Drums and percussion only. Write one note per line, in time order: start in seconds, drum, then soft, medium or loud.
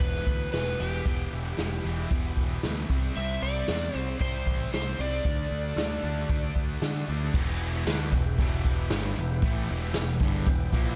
0.00 kick loud
0.00 open hi-hat soft
0.14 snare soft
0.27 kick medium
0.53 snare loud
0.53 open hi-hat soft
1.06 kick loud
1.06 open hi-hat soft
1.58 snare medium
1.58 open hi-hat soft
2.11 kick loud
2.11 open hi-hat soft
2.37 kick medium
2.63 snare loud
2.63 open hi-hat soft
2.90 kick medium
3.16 open hi-hat soft
3.68 snare loud
3.68 open hi-hat soft
4.20 kick loud
4.20 open hi-hat soft
4.47 kick medium
4.73 snare loud
4.73 open hi-hat soft
5.25 kick loud
5.25 open hi-hat soft
5.78 snare loud
5.78 open hi-hat soft
6.30 kick loud
6.30 open hi-hat soft
6.56 kick medium
6.82 snare loud
6.82 open hi-hat soft
7.34 kick loud
7.34 crash medium
7.61 open hi-hat soft
7.87 snare loud
7.87 open hi-hat medium
8.12 kick medium
8.12 open hi-hat medium
8.38 kick loud
8.38 open hi-hat medium
8.65 kick medium
8.65 open hi-hat medium
8.90 snare loud
8.90 open hi-hat medium
9.16 open hi-hat medium
9.42 kick loud
9.42 open hi-hat medium
9.69 open hi-hat soft
9.94 snare loud
9.94 open hi-hat medium
10.20 kick medium
10.20 open hi-hat medium
10.46 kick loud
10.46 open hi-hat medium
10.72 kick medium
10.72 open hi-hat medium